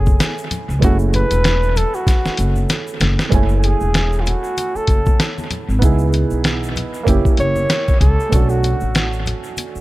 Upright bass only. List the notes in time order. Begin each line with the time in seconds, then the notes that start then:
Already playing: F#1
0.69 C#2
0.82 F#1
1.31 E1
2.25 muted upright bass stroke
2.39 F#1
3.01 F#1
3.32 F#1
3.81 E1
4.75 muted upright bass stroke
4.88 F#1
5.69 G#1
5.82 C#2
6.31 B1
7.06 F#1
7.25 muted upright bass stroke
7.39 F#1
8.01 C#2
8.32 B1
8.82 A1
9.75 muted upright bass stroke